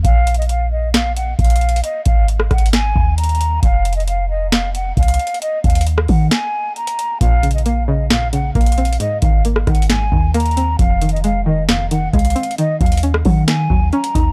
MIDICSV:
0, 0, Header, 1, 5, 480
1, 0, Start_track
1, 0, Key_signature, -5, "minor"
1, 0, Tempo, 447761
1, 48, Time_signature, 4, 2, 24, 8
1, 15355, End_track
2, 0, Start_track
2, 0, Title_t, "Flute"
2, 0, Program_c, 0, 73
2, 48, Note_on_c, 0, 77, 114
2, 387, Note_off_c, 0, 77, 0
2, 409, Note_on_c, 0, 75, 72
2, 520, Note_off_c, 0, 75, 0
2, 528, Note_on_c, 0, 77, 84
2, 751, Note_off_c, 0, 77, 0
2, 767, Note_on_c, 0, 75, 82
2, 990, Note_off_c, 0, 75, 0
2, 1010, Note_on_c, 0, 77, 88
2, 1232, Note_off_c, 0, 77, 0
2, 1250, Note_on_c, 0, 78, 79
2, 1472, Note_off_c, 0, 78, 0
2, 1488, Note_on_c, 0, 77, 82
2, 1939, Note_off_c, 0, 77, 0
2, 1970, Note_on_c, 0, 75, 96
2, 2192, Note_off_c, 0, 75, 0
2, 2209, Note_on_c, 0, 77, 83
2, 2431, Note_off_c, 0, 77, 0
2, 2691, Note_on_c, 0, 78, 84
2, 2912, Note_off_c, 0, 78, 0
2, 2928, Note_on_c, 0, 80, 86
2, 3379, Note_off_c, 0, 80, 0
2, 3409, Note_on_c, 0, 82, 84
2, 3860, Note_off_c, 0, 82, 0
2, 3886, Note_on_c, 0, 77, 105
2, 4225, Note_off_c, 0, 77, 0
2, 4248, Note_on_c, 0, 75, 73
2, 4360, Note_off_c, 0, 75, 0
2, 4368, Note_on_c, 0, 77, 81
2, 4591, Note_off_c, 0, 77, 0
2, 4608, Note_on_c, 0, 75, 81
2, 4831, Note_off_c, 0, 75, 0
2, 4849, Note_on_c, 0, 77, 85
2, 5071, Note_off_c, 0, 77, 0
2, 5091, Note_on_c, 0, 78, 77
2, 5313, Note_off_c, 0, 78, 0
2, 5330, Note_on_c, 0, 77, 84
2, 5780, Note_off_c, 0, 77, 0
2, 5806, Note_on_c, 0, 75, 101
2, 6030, Note_off_c, 0, 75, 0
2, 6050, Note_on_c, 0, 77, 81
2, 6272, Note_off_c, 0, 77, 0
2, 6528, Note_on_c, 0, 78, 79
2, 6751, Note_off_c, 0, 78, 0
2, 6769, Note_on_c, 0, 80, 89
2, 7220, Note_off_c, 0, 80, 0
2, 7251, Note_on_c, 0, 82, 84
2, 7701, Note_off_c, 0, 82, 0
2, 7729, Note_on_c, 0, 77, 119
2, 8067, Note_off_c, 0, 77, 0
2, 8088, Note_on_c, 0, 75, 70
2, 8200, Note_off_c, 0, 75, 0
2, 8209, Note_on_c, 0, 77, 81
2, 8431, Note_off_c, 0, 77, 0
2, 8447, Note_on_c, 0, 75, 78
2, 8670, Note_off_c, 0, 75, 0
2, 8690, Note_on_c, 0, 77, 89
2, 8912, Note_off_c, 0, 77, 0
2, 8930, Note_on_c, 0, 78, 81
2, 9152, Note_off_c, 0, 78, 0
2, 9168, Note_on_c, 0, 77, 84
2, 9619, Note_off_c, 0, 77, 0
2, 9651, Note_on_c, 0, 75, 100
2, 9872, Note_off_c, 0, 75, 0
2, 9889, Note_on_c, 0, 77, 85
2, 10111, Note_off_c, 0, 77, 0
2, 10371, Note_on_c, 0, 78, 85
2, 10592, Note_off_c, 0, 78, 0
2, 10608, Note_on_c, 0, 80, 88
2, 11060, Note_off_c, 0, 80, 0
2, 11090, Note_on_c, 0, 82, 83
2, 11541, Note_off_c, 0, 82, 0
2, 11566, Note_on_c, 0, 77, 105
2, 11906, Note_off_c, 0, 77, 0
2, 11928, Note_on_c, 0, 75, 76
2, 12039, Note_off_c, 0, 75, 0
2, 12049, Note_on_c, 0, 77, 79
2, 12271, Note_off_c, 0, 77, 0
2, 12287, Note_on_c, 0, 75, 81
2, 12510, Note_off_c, 0, 75, 0
2, 12529, Note_on_c, 0, 77, 86
2, 12751, Note_off_c, 0, 77, 0
2, 12771, Note_on_c, 0, 78, 81
2, 12993, Note_off_c, 0, 78, 0
2, 13009, Note_on_c, 0, 77, 82
2, 13460, Note_off_c, 0, 77, 0
2, 13485, Note_on_c, 0, 75, 98
2, 13709, Note_off_c, 0, 75, 0
2, 13729, Note_on_c, 0, 77, 80
2, 13951, Note_off_c, 0, 77, 0
2, 14207, Note_on_c, 0, 78, 79
2, 14430, Note_off_c, 0, 78, 0
2, 14448, Note_on_c, 0, 80, 90
2, 14900, Note_off_c, 0, 80, 0
2, 14931, Note_on_c, 0, 82, 84
2, 15355, Note_off_c, 0, 82, 0
2, 15355, End_track
3, 0, Start_track
3, 0, Title_t, "Synth pluck"
3, 0, Program_c, 1, 84
3, 7731, Note_on_c, 1, 46, 93
3, 7965, Note_on_c, 1, 49, 76
3, 8209, Note_on_c, 1, 58, 84
3, 8435, Note_off_c, 1, 49, 0
3, 8448, Note_on_c, 1, 49, 96
3, 8677, Note_off_c, 1, 46, 0
3, 8690, Note_on_c, 1, 46, 77
3, 8916, Note_off_c, 1, 49, 0
3, 8929, Note_on_c, 1, 49, 81
3, 9158, Note_off_c, 1, 58, 0
3, 9171, Note_on_c, 1, 58, 88
3, 9409, Note_on_c, 1, 60, 76
3, 9647, Note_on_c, 1, 44, 91
3, 9649, Note_off_c, 1, 46, 0
3, 9649, Note_off_c, 1, 49, 0
3, 9649, Note_off_c, 1, 60, 0
3, 9650, Note_off_c, 1, 58, 0
3, 9888, Note_on_c, 1, 51, 76
3, 10131, Note_on_c, 1, 58, 80
3, 10357, Note_off_c, 1, 51, 0
3, 10370, Note_on_c, 1, 51, 95
3, 10597, Note_off_c, 1, 44, 0
3, 10610, Note_on_c, 1, 44, 71
3, 10838, Note_off_c, 1, 51, 0
3, 10851, Note_on_c, 1, 51, 79
3, 11076, Note_off_c, 1, 58, 0
3, 11089, Note_on_c, 1, 58, 107
3, 11327, Note_on_c, 1, 60, 80
3, 11568, Note_off_c, 1, 60, 0
3, 11569, Note_off_c, 1, 44, 0
3, 11569, Note_off_c, 1, 51, 0
3, 11569, Note_off_c, 1, 58, 0
3, 11569, Note_on_c, 1, 41, 97
3, 11808, Note_on_c, 1, 51, 74
3, 12049, Note_on_c, 1, 56, 86
3, 12274, Note_off_c, 1, 51, 0
3, 12286, Note_on_c, 1, 51, 93
3, 12514, Note_off_c, 1, 41, 0
3, 12527, Note_on_c, 1, 41, 76
3, 12759, Note_off_c, 1, 51, 0
3, 12771, Note_on_c, 1, 51, 76
3, 12997, Note_off_c, 1, 56, 0
3, 13010, Note_on_c, 1, 56, 100
3, 13245, Note_on_c, 1, 60, 84
3, 13478, Note_off_c, 1, 51, 0
3, 13487, Note_off_c, 1, 60, 0
3, 13488, Note_off_c, 1, 41, 0
3, 13489, Note_off_c, 1, 56, 0
3, 13491, Note_on_c, 1, 51, 90
3, 13730, Note_on_c, 1, 54, 73
3, 13969, Note_on_c, 1, 61, 83
3, 14195, Note_off_c, 1, 54, 0
3, 14208, Note_on_c, 1, 54, 88
3, 14435, Note_off_c, 1, 51, 0
3, 14448, Note_on_c, 1, 51, 74
3, 14673, Note_off_c, 1, 54, 0
3, 14686, Note_on_c, 1, 54, 75
3, 14918, Note_off_c, 1, 61, 0
3, 14931, Note_on_c, 1, 61, 99
3, 15168, Note_on_c, 1, 63, 81
3, 15355, Note_off_c, 1, 51, 0
3, 15355, Note_off_c, 1, 54, 0
3, 15355, Note_off_c, 1, 61, 0
3, 15355, Note_off_c, 1, 63, 0
3, 15355, End_track
4, 0, Start_track
4, 0, Title_t, "808-style bass"
4, 0, Program_c, 2, 38
4, 48, Note_on_c, 2, 34, 109
4, 1445, Note_off_c, 2, 34, 0
4, 1488, Note_on_c, 2, 34, 111
4, 1949, Note_off_c, 2, 34, 0
4, 2209, Note_on_c, 2, 32, 106
4, 2669, Note_off_c, 2, 32, 0
4, 2690, Note_on_c, 2, 32, 102
4, 3150, Note_off_c, 2, 32, 0
4, 3169, Note_on_c, 2, 39, 104
4, 3860, Note_off_c, 2, 39, 0
4, 3888, Note_on_c, 2, 29, 112
4, 5285, Note_off_c, 2, 29, 0
4, 5328, Note_on_c, 2, 36, 108
4, 5559, Note_off_c, 2, 36, 0
4, 6049, Note_on_c, 2, 39, 110
4, 6509, Note_off_c, 2, 39, 0
4, 6529, Note_on_c, 2, 51, 102
4, 6759, Note_off_c, 2, 51, 0
4, 7728, Note_on_c, 2, 34, 109
4, 9126, Note_off_c, 2, 34, 0
4, 9168, Note_on_c, 2, 34, 107
4, 9629, Note_off_c, 2, 34, 0
4, 9889, Note_on_c, 2, 32, 107
4, 10349, Note_off_c, 2, 32, 0
4, 10369, Note_on_c, 2, 32, 107
4, 10830, Note_off_c, 2, 32, 0
4, 10849, Note_on_c, 2, 39, 104
4, 11540, Note_off_c, 2, 39, 0
4, 11568, Note_on_c, 2, 29, 112
4, 12965, Note_off_c, 2, 29, 0
4, 13008, Note_on_c, 2, 36, 109
4, 13239, Note_off_c, 2, 36, 0
4, 13729, Note_on_c, 2, 39, 111
4, 14189, Note_off_c, 2, 39, 0
4, 14209, Note_on_c, 2, 51, 108
4, 14670, Note_off_c, 2, 51, 0
4, 14689, Note_on_c, 2, 39, 108
4, 14919, Note_off_c, 2, 39, 0
4, 15169, Note_on_c, 2, 39, 105
4, 15355, Note_off_c, 2, 39, 0
4, 15355, End_track
5, 0, Start_track
5, 0, Title_t, "Drums"
5, 48, Note_on_c, 9, 36, 111
5, 49, Note_on_c, 9, 42, 84
5, 156, Note_off_c, 9, 36, 0
5, 157, Note_off_c, 9, 42, 0
5, 289, Note_on_c, 9, 42, 81
5, 369, Note_off_c, 9, 42, 0
5, 369, Note_on_c, 9, 42, 59
5, 449, Note_off_c, 9, 42, 0
5, 449, Note_on_c, 9, 42, 45
5, 528, Note_off_c, 9, 42, 0
5, 528, Note_on_c, 9, 42, 68
5, 636, Note_off_c, 9, 42, 0
5, 1009, Note_on_c, 9, 38, 102
5, 1009, Note_on_c, 9, 42, 82
5, 1116, Note_off_c, 9, 38, 0
5, 1116, Note_off_c, 9, 42, 0
5, 1249, Note_on_c, 9, 42, 74
5, 1356, Note_off_c, 9, 42, 0
5, 1488, Note_on_c, 9, 36, 91
5, 1489, Note_on_c, 9, 42, 50
5, 1549, Note_off_c, 9, 42, 0
5, 1549, Note_on_c, 9, 42, 59
5, 1595, Note_off_c, 9, 36, 0
5, 1609, Note_off_c, 9, 42, 0
5, 1609, Note_on_c, 9, 42, 71
5, 1668, Note_off_c, 9, 42, 0
5, 1668, Note_on_c, 9, 42, 82
5, 1729, Note_off_c, 9, 42, 0
5, 1729, Note_on_c, 9, 42, 60
5, 1808, Note_off_c, 9, 42, 0
5, 1808, Note_on_c, 9, 42, 61
5, 1888, Note_off_c, 9, 42, 0
5, 1888, Note_on_c, 9, 42, 63
5, 1969, Note_off_c, 9, 42, 0
5, 1969, Note_on_c, 9, 42, 83
5, 2076, Note_off_c, 9, 42, 0
5, 2203, Note_on_c, 9, 42, 78
5, 2209, Note_on_c, 9, 36, 109
5, 2310, Note_off_c, 9, 42, 0
5, 2316, Note_off_c, 9, 36, 0
5, 2448, Note_on_c, 9, 42, 69
5, 2556, Note_off_c, 9, 42, 0
5, 2568, Note_on_c, 9, 37, 95
5, 2675, Note_off_c, 9, 37, 0
5, 2688, Note_on_c, 9, 37, 68
5, 2689, Note_on_c, 9, 36, 89
5, 2689, Note_on_c, 9, 42, 41
5, 2769, Note_off_c, 9, 42, 0
5, 2769, Note_on_c, 9, 42, 54
5, 2795, Note_off_c, 9, 37, 0
5, 2797, Note_off_c, 9, 36, 0
5, 2849, Note_off_c, 9, 42, 0
5, 2849, Note_on_c, 9, 42, 71
5, 2929, Note_off_c, 9, 42, 0
5, 2929, Note_on_c, 9, 38, 102
5, 2929, Note_on_c, 9, 42, 82
5, 3036, Note_off_c, 9, 38, 0
5, 3036, Note_off_c, 9, 42, 0
5, 3169, Note_on_c, 9, 36, 93
5, 3276, Note_off_c, 9, 36, 0
5, 3408, Note_on_c, 9, 42, 79
5, 3469, Note_off_c, 9, 42, 0
5, 3469, Note_on_c, 9, 42, 69
5, 3528, Note_off_c, 9, 42, 0
5, 3528, Note_on_c, 9, 42, 57
5, 3589, Note_off_c, 9, 42, 0
5, 3589, Note_on_c, 9, 42, 49
5, 3652, Note_off_c, 9, 42, 0
5, 3652, Note_on_c, 9, 42, 79
5, 3759, Note_off_c, 9, 42, 0
5, 3888, Note_on_c, 9, 36, 115
5, 3889, Note_on_c, 9, 42, 83
5, 3996, Note_off_c, 9, 36, 0
5, 3996, Note_off_c, 9, 42, 0
5, 4129, Note_on_c, 9, 42, 79
5, 4209, Note_off_c, 9, 42, 0
5, 4209, Note_on_c, 9, 42, 62
5, 4289, Note_off_c, 9, 42, 0
5, 4289, Note_on_c, 9, 42, 46
5, 4369, Note_off_c, 9, 42, 0
5, 4369, Note_on_c, 9, 42, 69
5, 4476, Note_off_c, 9, 42, 0
5, 4849, Note_on_c, 9, 38, 104
5, 4849, Note_on_c, 9, 42, 83
5, 4956, Note_off_c, 9, 38, 0
5, 4957, Note_off_c, 9, 42, 0
5, 5089, Note_on_c, 9, 42, 76
5, 5196, Note_off_c, 9, 42, 0
5, 5328, Note_on_c, 9, 36, 92
5, 5328, Note_on_c, 9, 42, 48
5, 5389, Note_off_c, 9, 42, 0
5, 5389, Note_on_c, 9, 42, 62
5, 5435, Note_off_c, 9, 36, 0
5, 5448, Note_off_c, 9, 42, 0
5, 5448, Note_on_c, 9, 42, 73
5, 5508, Note_off_c, 9, 42, 0
5, 5508, Note_on_c, 9, 42, 83
5, 5569, Note_off_c, 9, 42, 0
5, 5569, Note_on_c, 9, 42, 63
5, 5648, Note_off_c, 9, 42, 0
5, 5648, Note_on_c, 9, 42, 63
5, 5728, Note_off_c, 9, 42, 0
5, 5728, Note_on_c, 9, 42, 62
5, 5809, Note_off_c, 9, 42, 0
5, 5809, Note_on_c, 9, 42, 85
5, 5916, Note_off_c, 9, 42, 0
5, 6048, Note_on_c, 9, 42, 47
5, 6049, Note_on_c, 9, 36, 104
5, 6108, Note_off_c, 9, 42, 0
5, 6108, Note_on_c, 9, 42, 57
5, 6156, Note_off_c, 9, 36, 0
5, 6168, Note_off_c, 9, 42, 0
5, 6168, Note_on_c, 9, 42, 69
5, 6228, Note_off_c, 9, 42, 0
5, 6228, Note_on_c, 9, 42, 77
5, 6288, Note_off_c, 9, 42, 0
5, 6288, Note_on_c, 9, 42, 70
5, 6395, Note_off_c, 9, 42, 0
5, 6407, Note_on_c, 9, 37, 96
5, 6515, Note_off_c, 9, 37, 0
5, 6522, Note_on_c, 9, 46, 51
5, 6529, Note_on_c, 9, 36, 90
5, 6629, Note_off_c, 9, 46, 0
5, 6636, Note_off_c, 9, 36, 0
5, 6768, Note_on_c, 9, 38, 99
5, 6769, Note_on_c, 9, 42, 81
5, 6875, Note_off_c, 9, 38, 0
5, 6876, Note_off_c, 9, 42, 0
5, 7248, Note_on_c, 9, 42, 49
5, 7355, Note_off_c, 9, 42, 0
5, 7368, Note_on_c, 9, 42, 85
5, 7475, Note_off_c, 9, 42, 0
5, 7491, Note_on_c, 9, 42, 76
5, 7599, Note_off_c, 9, 42, 0
5, 7728, Note_on_c, 9, 36, 110
5, 7729, Note_on_c, 9, 42, 82
5, 7835, Note_off_c, 9, 36, 0
5, 7836, Note_off_c, 9, 42, 0
5, 7968, Note_on_c, 9, 42, 79
5, 8048, Note_off_c, 9, 42, 0
5, 8048, Note_on_c, 9, 42, 62
5, 8128, Note_off_c, 9, 42, 0
5, 8128, Note_on_c, 9, 42, 46
5, 8208, Note_off_c, 9, 42, 0
5, 8208, Note_on_c, 9, 42, 69
5, 8315, Note_off_c, 9, 42, 0
5, 8688, Note_on_c, 9, 38, 105
5, 8689, Note_on_c, 9, 42, 80
5, 8795, Note_off_c, 9, 38, 0
5, 8796, Note_off_c, 9, 42, 0
5, 8928, Note_on_c, 9, 42, 75
5, 9036, Note_off_c, 9, 42, 0
5, 9168, Note_on_c, 9, 36, 92
5, 9168, Note_on_c, 9, 42, 49
5, 9228, Note_off_c, 9, 42, 0
5, 9228, Note_on_c, 9, 42, 60
5, 9275, Note_off_c, 9, 36, 0
5, 9288, Note_off_c, 9, 42, 0
5, 9288, Note_on_c, 9, 42, 72
5, 9348, Note_off_c, 9, 42, 0
5, 9348, Note_on_c, 9, 42, 82
5, 9408, Note_off_c, 9, 42, 0
5, 9408, Note_on_c, 9, 42, 62
5, 9488, Note_off_c, 9, 42, 0
5, 9488, Note_on_c, 9, 42, 61
5, 9568, Note_off_c, 9, 42, 0
5, 9568, Note_on_c, 9, 42, 63
5, 9649, Note_off_c, 9, 42, 0
5, 9649, Note_on_c, 9, 42, 81
5, 9756, Note_off_c, 9, 42, 0
5, 9883, Note_on_c, 9, 42, 74
5, 9889, Note_on_c, 9, 36, 105
5, 9990, Note_off_c, 9, 42, 0
5, 9996, Note_off_c, 9, 36, 0
5, 10128, Note_on_c, 9, 42, 71
5, 10235, Note_off_c, 9, 42, 0
5, 10248, Note_on_c, 9, 37, 95
5, 10355, Note_off_c, 9, 37, 0
5, 10368, Note_on_c, 9, 37, 65
5, 10368, Note_on_c, 9, 42, 42
5, 10369, Note_on_c, 9, 36, 90
5, 10448, Note_off_c, 9, 42, 0
5, 10448, Note_on_c, 9, 42, 55
5, 10475, Note_off_c, 9, 37, 0
5, 10476, Note_off_c, 9, 36, 0
5, 10529, Note_off_c, 9, 42, 0
5, 10529, Note_on_c, 9, 42, 70
5, 10609, Note_off_c, 9, 42, 0
5, 10609, Note_on_c, 9, 38, 102
5, 10609, Note_on_c, 9, 42, 81
5, 10716, Note_off_c, 9, 38, 0
5, 10716, Note_off_c, 9, 42, 0
5, 10849, Note_on_c, 9, 36, 97
5, 10956, Note_off_c, 9, 36, 0
5, 11088, Note_on_c, 9, 42, 82
5, 11149, Note_off_c, 9, 42, 0
5, 11149, Note_on_c, 9, 42, 68
5, 11208, Note_off_c, 9, 42, 0
5, 11208, Note_on_c, 9, 42, 61
5, 11269, Note_off_c, 9, 42, 0
5, 11269, Note_on_c, 9, 42, 47
5, 11332, Note_off_c, 9, 42, 0
5, 11332, Note_on_c, 9, 42, 81
5, 11439, Note_off_c, 9, 42, 0
5, 11568, Note_on_c, 9, 36, 116
5, 11569, Note_on_c, 9, 42, 83
5, 11675, Note_off_c, 9, 36, 0
5, 11676, Note_off_c, 9, 42, 0
5, 11808, Note_on_c, 9, 42, 79
5, 11888, Note_off_c, 9, 42, 0
5, 11888, Note_on_c, 9, 42, 60
5, 11968, Note_off_c, 9, 42, 0
5, 11968, Note_on_c, 9, 42, 45
5, 12048, Note_off_c, 9, 42, 0
5, 12048, Note_on_c, 9, 42, 69
5, 12155, Note_off_c, 9, 42, 0
5, 12528, Note_on_c, 9, 38, 102
5, 12529, Note_on_c, 9, 42, 83
5, 12635, Note_off_c, 9, 38, 0
5, 12636, Note_off_c, 9, 42, 0
5, 12769, Note_on_c, 9, 42, 75
5, 12876, Note_off_c, 9, 42, 0
5, 13008, Note_on_c, 9, 36, 94
5, 13008, Note_on_c, 9, 42, 47
5, 13068, Note_off_c, 9, 42, 0
5, 13068, Note_on_c, 9, 42, 59
5, 13115, Note_off_c, 9, 36, 0
5, 13128, Note_off_c, 9, 42, 0
5, 13128, Note_on_c, 9, 42, 73
5, 13188, Note_off_c, 9, 42, 0
5, 13188, Note_on_c, 9, 42, 81
5, 13248, Note_off_c, 9, 42, 0
5, 13248, Note_on_c, 9, 42, 61
5, 13328, Note_off_c, 9, 42, 0
5, 13328, Note_on_c, 9, 42, 61
5, 13408, Note_off_c, 9, 42, 0
5, 13408, Note_on_c, 9, 42, 62
5, 13489, Note_off_c, 9, 42, 0
5, 13489, Note_on_c, 9, 42, 82
5, 13596, Note_off_c, 9, 42, 0
5, 13728, Note_on_c, 9, 42, 47
5, 13729, Note_on_c, 9, 36, 107
5, 13788, Note_off_c, 9, 42, 0
5, 13788, Note_on_c, 9, 42, 58
5, 13836, Note_off_c, 9, 36, 0
5, 13848, Note_off_c, 9, 42, 0
5, 13848, Note_on_c, 9, 42, 70
5, 13908, Note_off_c, 9, 42, 0
5, 13908, Note_on_c, 9, 42, 81
5, 13968, Note_off_c, 9, 42, 0
5, 13968, Note_on_c, 9, 42, 69
5, 14076, Note_off_c, 9, 42, 0
5, 14088, Note_on_c, 9, 37, 100
5, 14195, Note_off_c, 9, 37, 0
5, 14203, Note_on_c, 9, 46, 52
5, 14209, Note_on_c, 9, 36, 91
5, 14310, Note_off_c, 9, 46, 0
5, 14317, Note_off_c, 9, 36, 0
5, 14449, Note_on_c, 9, 38, 103
5, 14449, Note_on_c, 9, 42, 82
5, 14556, Note_off_c, 9, 38, 0
5, 14556, Note_off_c, 9, 42, 0
5, 14689, Note_on_c, 9, 36, 97
5, 14796, Note_off_c, 9, 36, 0
5, 14928, Note_on_c, 9, 42, 49
5, 15036, Note_off_c, 9, 42, 0
5, 15049, Note_on_c, 9, 42, 83
5, 15156, Note_off_c, 9, 42, 0
5, 15169, Note_on_c, 9, 36, 92
5, 15172, Note_on_c, 9, 42, 79
5, 15276, Note_off_c, 9, 36, 0
5, 15279, Note_off_c, 9, 42, 0
5, 15355, End_track
0, 0, End_of_file